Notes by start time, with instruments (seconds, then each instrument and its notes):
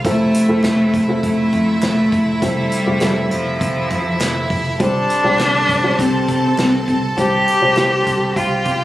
0.05 picked electric bass F1, upright piano C3 A3 C4 E4 F4 A4, cello A3, violin section E4 E5, kick, closed hi-hat
0.34 closed hi-hat
0.49 picked electric bass F1, upright piano A3 C4 E4 F4 A4
0.63 picked electric bass F1, snare, clap, closed hi-hat
0.94 picked electric bass F1, kick, closed hi-hat
1.08 upright piano A3 C4 E4 F4 A4
1.23 picked electric bass F1, cello A3, kick, closed hi-hat
1.52 picked electric bass F2, kick, closed hi-hat
1.83 picked electric bass F1, cello A3, snare, clap, closed hi-hat
2.12 picked electric bass F1, kick, closed hi-hat
2.37 cello A3
2.42 picked electric bass F1, upright piano C3 A3 C4 E4 F4 A4, cello G3, kick, closed hi-hat
2.72 closed hi-hat
2.86 picked electric bass F1, upright piano A3 C4 E4 F4 G4
3.01 picked electric bass F1, upright piano A3 C4 E4 F4 A4, snare, clap, closed hi-hat
3.31 picked electric bass F1, cello F3, closed hi-hat
3.61 picked electric bass F1, kick, closed hi-hat
3.90 picked electric bass F2, kick, closed hi-hat
4.20 picked electric bass F1, snare, clap, closed hi-hat
4.50 picked electric bass F1, kick, open hi-hat
4.80 picked electric bass C2, upright piano G2 G3 C4 F4 G4 C5, cello D4, violin section A4 A5, kick, closed hi-hat
5.10 closed hi-hat
5.24 picked electric bass C2, upright piano G3 C4 F4 G4 C5
5.39 picked electric bass C2, snare, clap, closed hi-hat
5.69 picked electric bass C2, kick, closed hi-hat
5.84 upright piano G3 C4 F4 G4 C5
5.99 picked electric bass C2, cello C4, kick, closed hi-hat
6.28 picked electric bass C3, kick, closed hi-hat
6.58 picked electric bass C2, cello C4, snare, clap, closed hi-hat
6.88 picked electric bass C2, cello C4, kick, closed hi-hat
7.17 picked electric bass C2, upright piano G2 G3 C4 F4 G4 C5, cello G4, kick, closed hi-hat
7.48 closed hi-hat
7.61 picked electric bass C2, upright piano G3 C4 F4 G4 C5
7.76 picked electric bass C2, upright piano G3 C4 F4 G4 C5, snare, clap, closed hi-hat
8.07 picked electric bass C2, kick, closed hi-hat
8.36 picked electric bass C2, cello F4, violin section G4 G5, kick, closed hi-hat
8.65 picked electric bass C3, kick, closed hi-hat